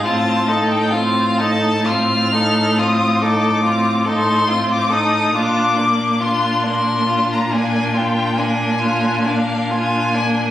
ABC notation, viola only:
X:1
M:12/8
L:1/8
Q:3/8=46
K:Fdor
V:1 name="Viola"
C E C E C E C E C E C E | D B, D B, D B, D B, D B, D B, |]